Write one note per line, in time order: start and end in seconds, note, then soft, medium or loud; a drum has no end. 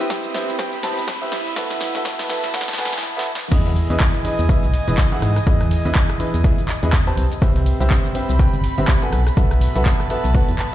0.00 0.32 C4 medium
0.00 1.32 C4 medium
0.00 1.31 E4 medium
0.00 3.03 E4 medium
0.00 0.32 G4 medium
0.00 0.32 B4 medium
0.00 0.32 C5 medium
0.00 0.32 E5 medium
0.00 3.03 D#6 medium
0.00 riser medium
0.00 shaker medium
0.10 kick loud
0.10 snare medium
0.10 snare loud
0.10 closed hi-hat medium
0.10 shaker medium
0.24 1.97 B5 medium
0.24 closed hi-hat medium
0.24 shaker soft
0.34 0.56 C4 medium
0.34 0.56 G4 medium
0.34 0.56 B4 medium
0.34 0.56 C5 medium
0.34 0.56 E5 medium
0.34 snare medium
0.34 closed hi-hat medium
0.34 open hi-hat loud
0.49 closed hi-hat medium
0.49 shaker medium
0.59 0.72 C4 medium
0.59 0.72 G4 medium
0.59 0.72 B4 medium
0.59 0.72 C5 medium
0.59 0.72 G5 medium
0.59 kick loud
0.59 snare medium
0.59 closed hi-hat medium
0.59 shaker medium
0.73 closed hi-hat medium
0.73 shaker soft
0.83 0.96 C4 medium
0.83 0.96 G4 medium
0.83 0.96 B4 medium
0.83 0.96 C5 medium
0.83 0.96 A5 medium
0.83 snare medium
0.83 closed hi-hat medium
0.83 open hi-hat loud
0.97 open hi-hat medium
0.97 shaker medium
1.08 kick loud
1.08 snare medium
1.08 snare loud
1.08 closed hi-hat medium
1.08 shaker medium
1.22 1.31 G4 medium
1.22 1.31 B4 medium
1.22 1.31 C5 medium
1.22 1.31 E5 medium
1.22 shaker soft
1.32 3.03 E4 medium
1.32 snare loud
1.32 closed hi-hat medium
1.32 open hi-hat loud
1.46 closed hi-hat medium
1.46 shaker medium
1.56 1.92 B3 medium
1.56 1.92 F#4 medium
1.56 1.92 A4 medium
1.56 1.92 B4 medium
1.56 3.03 B4 medium
1.56 1.92 E5 medium
1.56 kick loud
1.56 snare medium
1.56 closed hi-hat medium
1.56 shaker medium
1.70 snare medium
1.70 closed hi-hat soft
1.70 shaker soft
1.81 snare loud
1.81 open hi-hat loud
1.81 open hi-hat medium
1.88 3.03 A5 medium
1.95 2.27 B3 medium
1.95 2.27 F#4 medium
1.95 2.27 A4 medium
1.95 2.27 B4 medium
1.95 2.27 E5 medium
1.95 snare medium
1.95 closed hi-hat medium
1.95 shaker medium
2.05 kick loud
2.05 snare loud
2.05 closed hi-hat medium
2.05 shaker medium
2.19 snare medium
2.19 closed hi-hat medium
2.19 shaker soft
2.29 2.52 B3 medium
2.29 2.52 F#4 medium
2.29 2.52 A4 medium
2.29 2.52 B4 medium
2.29 2.52 E5 medium
2.29 snare loud
2.29 closed hi-hat medium
2.29 open hi-hat loud
2.44 snare medium
2.44 snare soft
2.44 closed hi-hat medium
2.44 shaker medium
2.54 2.67 B3 medium
2.54 2.67 F#4 medium
2.54 2.67 A4 medium
2.54 2.67 B4 medium
2.54 2.67 F#5 medium
2.54 kick loud
2.54 snare loud
2.54 closed hi-hat medium
2.54 swell medium
2.54 shaker medium
2.61 snare loud
2.68 snare loud
2.68 open hi-hat medium
2.68 shaker soft
2.73 snare medium
2.78 2.91 B3 medium
2.78 2.91 F#4 medium
2.78 2.91 A4 medium
2.78 2.91 B4 medium
2.78 2.91 G#5 medium
2.78 snare soft
2.78 snare loud
2.78 closed hi-hat medium
2.78 open hi-hat loud
2.85 snare loud
2.93 snare medium
2.93 closed hi-hat medium
2.93 shaker medium
2.98 snare medium
3.03 snare medium
3.17 3.26 B3 medium
3.17 3.26 F#4 medium
3.17 3.26 A4 medium
3.17 3.26 B4 medium
3.17 3.26 E5 medium
3.17 snare medium
3.35 snare loud
3.51 3.82 E2 loud
3.51 3.87 E3 medium
3.51 3.87 E4 medium
3.51 3.87 G#4 medium
3.51 3.87 B4 medium
3.51 3.87 D#5 medium
3.51 kick loud
3.51 closed hi-hat medium
3.51 crash loud
3.51 ride medium
3.51 shaker medium
3.62 7.18 D#5 medium
3.62 7.17 G#5 medium
3.62 snare soft
3.62 closed hi-hat soft
3.66 shaker soft
3.76 closed hi-hat medium
3.76 open hi-hat loud
3.76 ride medium
3.90 3.97 E2 loud
3.90 4.22 E3 medium
3.90 4.22 E4 medium
3.90 4.22 G#4 medium
3.90 4.22 B4 medium
3.90 4.22 D#5 medium
3.90 closed hi-hat medium
3.90 shaker medium
4.00 kick loud
4.00 snare loud
4.00 clap loud
4.00 closed hi-hat medium
4.00 ride medium
4.00 shaker medium
4.15 closed hi-hat soft
4.15 shaker soft
4.25 4.47 E3 medium
4.25 4.47 E4 medium
4.25 4.47 G#4 medium
4.25 4.47 B4 medium
4.25 4.47 D#5 medium
4.25 closed hi-hat medium
4.25 open hi-hat loud
4.25 ride medium
4.39 4.53 E2 medium
4.39 closed hi-hat medium
4.39 shaker medium
4.49 4.62 E3 medium
4.49 4.62 E4 medium
4.49 4.62 G#4 medium
4.49 4.62 B4 medium
4.49 4.62 E5 medium
4.49 kick loud
4.49 closed hi-hat medium
4.49 ride medium
4.49 shaker medium
4.63 4.77 B1 medium
4.63 closed hi-hat soft
4.63 shaker soft
4.73 snare medium
4.73 closed hi-hat medium
4.73 open hi-hat loud
4.73 ride medium
4.88 4.94 E1 loud
4.88 5.09 E3 medium
4.88 5.09 E4 medium
4.88 5.09 G#4 medium
4.88 5.09 B4 medium
4.88 5.09 D#5 medium
4.88 open hi-hat medium
4.88 shaker medium
4.98 kick loud
4.98 snare loud
4.98 clap loud
4.98 closed hi-hat medium
4.98 ride medium
4.98 shaker medium
5.12 5.29 E3 medium
5.12 5.29 E4 medium
5.12 5.29 G#4 medium
5.12 5.29 B4 medium
5.12 5.29 F#5 medium
5.12 closed hi-hat soft
5.12 shaker soft
5.22 5.39 G#2 medium
5.22 cross-stick medium
5.22 closed hi-hat medium
5.22 open hi-hat loud
5.22 ride medium
5.36 cross-stick medium
5.36 closed hi-hat medium
5.36 shaker medium
5.47 5.77 E2 loud
5.47 5.82 E3 medium
5.47 5.82 E4 medium
5.47 5.82 G#4 medium
5.47 5.82 B4 medium
5.47 5.82 D#5 medium
5.47 kick loud
5.47 closed hi-hat medium
5.47 ride medium
5.47 shaker medium
5.61 cross-stick medium
5.61 closed hi-hat soft
5.61 shaker soft
5.71 open hi-hat loud
5.71 open hi-hat medium
5.71 ride medium
5.85 5.92 E2 loud
5.85 6.17 E3 medium
5.85 6.17 E4 medium
5.85 6.17 G#4 medium
5.85 6.17 B4 medium
5.85 6.17 D#5 medium
5.85 closed hi-hat medium
5.85 shaker medium
5.95 kick loud
5.95 snare loud
5.95 clap loud
5.95 closed hi-hat medium
5.95 ride medium
5.95 shaker medium
6.10 cross-stick medium
6.10 closed hi-hat soft
6.10 shaker soft
6.20 6.42 E3 medium
6.20 6.42 E4 medium
6.20 6.42 G#4 medium
6.20 6.42 B4 medium
6.20 6.42 D#5 medium
6.20 closed hi-hat medium
6.20 open hi-hat loud
6.20 ride medium
6.34 6.48 E2 medium
6.34 closed hi-hat medium
6.34 shaker medium
6.44 6.57 E3 medium
6.44 6.57 E4 medium
6.44 6.57 G#4 medium
6.44 6.57 B4 medium
6.44 6.57 E5 medium
6.44 kick loud
6.44 closed hi-hat medium
6.44 ride medium
6.44 shaker medium
6.58 open hi-hat medium
6.58 shaker soft
6.69 snare soft
6.69 clap medium
6.69 closed hi-hat medium
6.69 open hi-hat loud
6.69 ride medium
6.83 7.12 E2 medium
6.83 7.04 E3 medium
6.83 7.04 E4 medium
6.83 7.04 G#4 medium
6.83 7.04 B4 medium
6.83 7.04 D#5 medium
6.83 closed hi-hat medium
6.83 shaker medium
6.93 kick loud
6.93 snare loud
6.93 clap loud
6.93 closed hi-hat medium
6.93 ride medium
6.93 shaker medium
7.07 7.24 C4 medium
7.07 7.24 G4 medium
7.07 7.24 B4 medium
7.07 7.24 C5 medium
7.07 7.24 A5 loud
7.07 closed hi-hat soft
7.07 shaker soft
7.17 7.26 C2 medium
7.17 closed hi-hat medium
7.17 open hi-hat loud
7.17 ride medium
7.32 closed hi-hat medium
7.32 shaker medium
7.37 9.13 C4 medium
7.42 7.72 C2 loud
7.42 7.77 C4 medium
7.42 7.77 G4 medium
7.42 7.77 B4 medium
7.42 7.77 C5 medium
7.42 7.77 E5 medium
7.42 kick loud
7.42 closed hi-hat medium
7.42 ride medium
7.42 shaker medium
7.56 snare soft
7.56 closed hi-hat soft
7.56 shaker soft
7.66 closed hi-hat medium
7.66 open hi-hat loud
7.66 ride medium
7.80 7.87 C2 loud
7.80 8.13 C4 medium
7.80 8.13 G4 medium
7.80 8.13 B4 medium
7.80 8.13 C5 medium
7.80 8.13 E5 medium
7.80 closed hi-hat medium
7.80 shaker medium
7.87 10.02 B5 medium
7.87 kick loud
7.87 clap loud
7.87 closed hi-hat medium
7.87 ride medium
7.91 snare loud
7.91 closed hi-hat medium
7.91 shaker medium
8.05 closed hi-hat soft
8.05 shaker soft
8.15 8.37 C4 medium
8.15 8.37 G4 medium
8.15 8.37 B4 medium
8.15 8.37 C5 medium
8.15 8.37 E5 medium
8.15 closed hi-hat medium
8.15 open hi-hat loud
8.15 ride medium
8.29 8.43 C2 medium
8.29 closed hi-hat medium
8.29 shaker medium
8.39 8.52 C4 medium
8.39 8.52 G4 medium
8.39 8.52 B4 medium
8.39 8.52 C5 medium
8.39 8.52 G5 medium
8.39 kick loud
8.39 closed hi-hat medium
8.39 ride medium
8.39 shaker medium
8.54 8.68 G1 medium
8.54 closed hi-hat soft
8.54 shaker soft
8.64 snare medium
8.64 closed hi-hat medium
8.64 open hi-hat loud
8.64 ride medium
8.78 8.85 G1 loud
8.78 8.99 C4 medium
8.78 8.99 G4 medium
8.78 8.99 B4 medium
8.78 8.99 C5 medium
8.78 8.99 E5 medium
8.78 open hi-hat medium
8.78 shaker medium
8.88 kick loud
8.88 snare loud
8.88 clap loud
8.88 closed hi-hat medium
8.88 ride medium
8.88 shaker medium
9.02 9.19 B3 medium
9.02 9.19 F#4 medium
9.02 9.19 A4 medium
9.02 9.19 B4 medium
9.02 9.19 G#5 medium
9.02 closed hi-hat soft
9.02 shaker soft
9.13 9.30 B1 medium
9.13 cross-stick medium
9.13 closed hi-hat medium
9.13 open hi-hat loud
9.13 ride medium
9.25 10.75 B4 medium
9.25 cross-stick medium
9.25 closed hi-hat medium
9.25 shaker medium
9.37 9.67 B1 loud
9.37 9.72 B3 medium
9.37 9.72 F#4 medium
9.37 9.72 A4 medium
9.37 9.72 B4 medium
9.37 9.72 E5 medium
9.37 kick loud
9.37 closed hi-hat medium
9.37 ride medium
9.37 shaker medium
9.48 10.75 A5 medium
9.48 cross-stick medium
9.48 closed hi-hat soft
9.48 shaker soft
9.61 open hi-hat loud
9.61 open hi-hat medium
9.61 ride medium
9.75 9.82 B1 loud
9.75 10.08 B3 medium
9.75 10.08 F#4 medium
9.75 10.08 A4 medium
9.75 10.08 B4 medium
9.75 10.08 E5 medium
9.75 closed hi-hat soft
9.75 shaker medium
9.86 kick loud
9.86 snare loud
9.86 clap loud
9.86 closed hi-hat medium
9.86 ride medium
9.86 shaker medium
10.00 cross-stick medium
10.00 closed hi-hat soft
10.00 shaker soft
10.10 10.32 B3 medium
10.10 10.32 F#4 medium
10.10 10.32 A4 medium
10.10 10.32 B4 medium
10.10 10.32 E5 medium
10.10 closed hi-hat medium
10.10 open hi-hat loud
10.10 ride medium
10.24 10.38 B1 medium
10.24 closed hi-hat soft
10.24 shaker medium
10.35 10.47 B3 medium
10.35 10.47 F#4 medium
10.35 10.47 A4 medium
10.35 10.47 B4 medium
10.35 10.47 F#5 medium
10.35 kick loud
10.35 closed hi-hat medium
10.35 ride medium
10.35 shaker medium
10.49 10.55 E2 loud
10.49 open hi-hat medium
10.49 shaker soft
10.59 snare soft
10.59 clap medium
10.59 closed hi-hat medium
10.59 open hi-hat loud
10.59 ride medium